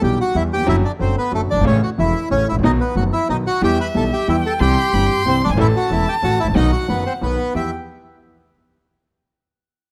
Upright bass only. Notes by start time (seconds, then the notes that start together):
0.03 B1
0.35 E2
0.68 F#1
1.00 F#1
1.32 F#1
1.53 F#1
1.57 G1
1.61 G#1 A1
1.99 E1
2.31 A1
2.51 G#1 A1
2.59 A#1
2.63 B1
2.95 F#1
3.29 B1
3.62 E2
3.95 B1
4.28 E2
4.60 C2
4.93 G1
5.25 C2
5.46 F#1 G1
5.53 G#1
5.57 A1
5.90 E1
6.23 A1
6.44 G#1 A1
6.52 A#1 B1
6.89 F#1
7.22 B1
7.55 E2